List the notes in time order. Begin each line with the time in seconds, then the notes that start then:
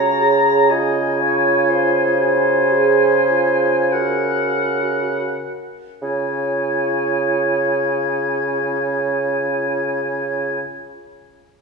Already playing: C#3 F#4 C#5 A#5
0.21 G#4
0.70 F4 D#5 G#5
1.20 C#5
1.70 C5
2.20 F#4 G#5
2.73 G#4
3.30 F4
3.92 F#4 A#4 F#5
6.02 C#3 F4 C#5 G#5